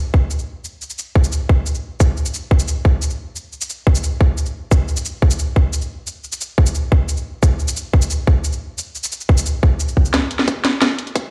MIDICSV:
0, 0, Header, 1, 2, 480
1, 0, Start_track
1, 0, Tempo, 338983
1, 916, Time_signature, 4, 2, 24, 8
1, 16008, End_track
2, 0, Start_track
2, 0, Title_t, "Drums"
2, 195, Note_on_c, 9, 36, 100
2, 336, Note_off_c, 9, 36, 0
2, 435, Note_on_c, 9, 69, 45
2, 555, Note_off_c, 9, 69, 0
2, 555, Note_on_c, 9, 69, 26
2, 697, Note_off_c, 9, 69, 0
2, 915, Note_on_c, 9, 69, 47
2, 1056, Note_off_c, 9, 69, 0
2, 1155, Note_on_c, 9, 69, 25
2, 1275, Note_off_c, 9, 69, 0
2, 1275, Note_on_c, 9, 69, 54
2, 1395, Note_off_c, 9, 69, 0
2, 1395, Note_on_c, 9, 69, 46
2, 1537, Note_off_c, 9, 69, 0
2, 1635, Note_on_c, 9, 36, 107
2, 1755, Note_on_c, 9, 69, 53
2, 1776, Note_off_c, 9, 36, 0
2, 1875, Note_off_c, 9, 69, 0
2, 1875, Note_on_c, 9, 69, 45
2, 2017, Note_off_c, 9, 69, 0
2, 2115, Note_on_c, 9, 36, 100
2, 2256, Note_off_c, 9, 36, 0
2, 2355, Note_on_c, 9, 69, 43
2, 2475, Note_off_c, 9, 69, 0
2, 2475, Note_on_c, 9, 69, 25
2, 2617, Note_off_c, 9, 69, 0
2, 2835, Note_on_c, 9, 36, 119
2, 2835, Note_on_c, 9, 69, 45
2, 2976, Note_off_c, 9, 36, 0
2, 2977, Note_off_c, 9, 69, 0
2, 3075, Note_on_c, 9, 69, 25
2, 3195, Note_off_c, 9, 69, 0
2, 3195, Note_on_c, 9, 69, 54
2, 3315, Note_off_c, 9, 69, 0
2, 3315, Note_on_c, 9, 69, 47
2, 3457, Note_off_c, 9, 69, 0
2, 3555, Note_on_c, 9, 36, 108
2, 3675, Note_on_c, 9, 69, 55
2, 3697, Note_off_c, 9, 36, 0
2, 3795, Note_off_c, 9, 69, 0
2, 3795, Note_on_c, 9, 69, 47
2, 3937, Note_off_c, 9, 69, 0
2, 4035, Note_on_c, 9, 36, 103
2, 4177, Note_off_c, 9, 36, 0
2, 4275, Note_on_c, 9, 69, 45
2, 4395, Note_off_c, 9, 69, 0
2, 4395, Note_on_c, 9, 69, 25
2, 4537, Note_off_c, 9, 69, 0
2, 4755, Note_on_c, 9, 69, 46
2, 4897, Note_off_c, 9, 69, 0
2, 4996, Note_on_c, 9, 69, 26
2, 5115, Note_off_c, 9, 69, 0
2, 5115, Note_on_c, 9, 69, 56
2, 5236, Note_off_c, 9, 69, 0
2, 5236, Note_on_c, 9, 69, 46
2, 5377, Note_off_c, 9, 69, 0
2, 5475, Note_on_c, 9, 36, 107
2, 5596, Note_on_c, 9, 69, 55
2, 5617, Note_off_c, 9, 36, 0
2, 5716, Note_off_c, 9, 69, 0
2, 5716, Note_on_c, 9, 69, 46
2, 5858, Note_off_c, 9, 69, 0
2, 5955, Note_on_c, 9, 36, 101
2, 6097, Note_off_c, 9, 36, 0
2, 6196, Note_on_c, 9, 69, 45
2, 6316, Note_off_c, 9, 69, 0
2, 6316, Note_on_c, 9, 69, 25
2, 6457, Note_off_c, 9, 69, 0
2, 6675, Note_on_c, 9, 36, 118
2, 6675, Note_on_c, 9, 69, 48
2, 6817, Note_off_c, 9, 36, 0
2, 6817, Note_off_c, 9, 69, 0
2, 6915, Note_on_c, 9, 69, 27
2, 7035, Note_off_c, 9, 69, 0
2, 7035, Note_on_c, 9, 69, 58
2, 7155, Note_off_c, 9, 69, 0
2, 7155, Note_on_c, 9, 69, 50
2, 7297, Note_off_c, 9, 69, 0
2, 7395, Note_on_c, 9, 36, 102
2, 7515, Note_on_c, 9, 69, 57
2, 7537, Note_off_c, 9, 36, 0
2, 7636, Note_off_c, 9, 69, 0
2, 7636, Note_on_c, 9, 69, 48
2, 7777, Note_off_c, 9, 69, 0
2, 7875, Note_on_c, 9, 36, 95
2, 8017, Note_off_c, 9, 36, 0
2, 8116, Note_on_c, 9, 69, 47
2, 8236, Note_off_c, 9, 69, 0
2, 8236, Note_on_c, 9, 69, 27
2, 8378, Note_off_c, 9, 69, 0
2, 8596, Note_on_c, 9, 69, 51
2, 8738, Note_off_c, 9, 69, 0
2, 8836, Note_on_c, 9, 69, 27
2, 8956, Note_off_c, 9, 69, 0
2, 8956, Note_on_c, 9, 69, 60
2, 9076, Note_off_c, 9, 69, 0
2, 9076, Note_on_c, 9, 69, 50
2, 9218, Note_off_c, 9, 69, 0
2, 9316, Note_on_c, 9, 36, 104
2, 9436, Note_on_c, 9, 69, 59
2, 9457, Note_off_c, 9, 36, 0
2, 9556, Note_off_c, 9, 69, 0
2, 9556, Note_on_c, 9, 69, 51
2, 9698, Note_off_c, 9, 69, 0
2, 9796, Note_on_c, 9, 36, 95
2, 9937, Note_off_c, 9, 36, 0
2, 10036, Note_on_c, 9, 69, 50
2, 10156, Note_off_c, 9, 69, 0
2, 10156, Note_on_c, 9, 69, 27
2, 10298, Note_off_c, 9, 69, 0
2, 10516, Note_on_c, 9, 36, 112
2, 10516, Note_on_c, 9, 69, 50
2, 10657, Note_off_c, 9, 36, 0
2, 10658, Note_off_c, 9, 69, 0
2, 10756, Note_on_c, 9, 69, 28
2, 10876, Note_off_c, 9, 69, 0
2, 10876, Note_on_c, 9, 69, 60
2, 10996, Note_off_c, 9, 69, 0
2, 10996, Note_on_c, 9, 69, 50
2, 11138, Note_off_c, 9, 69, 0
2, 11235, Note_on_c, 9, 36, 102
2, 11355, Note_on_c, 9, 69, 61
2, 11377, Note_off_c, 9, 36, 0
2, 11476, Note_off_c, 9, 69, 0
2, 11476, Note_on_c, 9, 69, 52
2, 11617, Note_off_c, 9, 69, 0
2, 11715, Note_on_c, 9, 36, 96
2, 11857, Note_off_c, 9, 36, 0
2, 11956, Note_on_c, 9, 69, 49
2, 12075, Note_off_c, 9, 69, 0
2, 12075, Note_on_c, 9, 69, 28
2, 12217, Note_off_c, 9, 69, 0
2, 12435, Note_on_c, 9, 69, 52
2, 12577, Note_off_c, 9, 69, 0
2, 12675, Note_on_c, 9, 69, 27
2, 12795, Note_off_c, 9, 69, 0
2, 12795, Note_on_c, 9, 69, 62
2, 12916, Note_off_c, 9, 69, 0
2, 12916, Note_on_c, 9, 69, 50
2, 13036, Note_off_c, 9, 69, 0
2, 13036, Note_on_c, 9, 69, 28
2, 13155, Note_on_c, 9, 36, 103
2, 13177, Note_off_c, 9, 69, 0
2, 13276, Note_on_c, 9, 69, 62
2, 13297, Note_off_c, 9, 36, 0
2, 13396, Note_off_c, 9, 69, 0
2, 13396, Note_on_c, 9, 69, 51
2, 13537, Note_off_c, 9, 69, 0
2, 13635, Note_on_c, 9, 36, 97
2, 13777, Note_off_c, 9, 36, 0
2, 13876, Note_on_c, 9, 69, 49
2, 13996, Note_off_c, 9, 69, 0
2, 13996, Note_on_c, 9, 69, 27
2, 14115, Note_on_c, 9, 36, 60
2, 14137, Note_off_c, 9, 69, 0
2, 14236, Note_on_c, 9, 69, 27
2, 14257, Note_off_c, 9, 36, 0
2, 14355, Note_on_c, 9, 36, 96
2, 14356, Note_on_c, 9, 38, 48
2, 14356, Note_on_c, 9, 42, 97
2, 14377, Note_off_c, 9, 69, 0
2, 14497, Note_off_c, 9, 36, 0
2, 14497, Note_off_c, 9, 38, 0
2, 14497, Note_off_c, 9, 42, 0
2, 14596, Note_on_c, 9, 42, 64
2, 14716, Note_on_c, 9, 38, 43
2, 14737, Note_off_c, 9, 42, 0
2, 14835, Note_on_c, 9, 36, 97
2, 14835, Note_on_c, 9, 42, 99
2, 14857, Note_off_c, 9, 38, 0
2, 14977, Note_off_c, 9, 36, 0
2, 14977, Note_off_c, 9, 42, 0
2, 15075, Note_on_c, 9, 38, 50
2, 15075, Note_on_c, 9, 42, 71
2, 15217, Note_off_c, 9, 38, 0
2, 15217, Note_off_c, 9, 42, 0
2, 15316, Note_on_c, 9, 36, 96
2, 15316, Note_on_c, 9, 38, 55
2, 15316, Note_on_c, 9, 42, 98
2, 15457, Note_off_c, 9, 36, 0
2, 15457, Note_off_c, 9, 38, 0
2, 15457, Note_off_c, 9, 42, 0
2, 15555, Note_on_c, 9, 42, 70
2, 15676, Note_off_c, 9, 42, 0
2, 15676, Note_on_c, 9, 42, 38
2, 15795, Note_on_c, 9, 36, 100
2, 15796, Note_off_c, 9, 42, 0
2, 15796, Note_on_c, 9, 42, 91
2, 15937, Note_off_c, 9, 36, 0
2, 15938, Note_off_c, 9, 42, 0
2, 16008, End_track
0, 0, End_of_file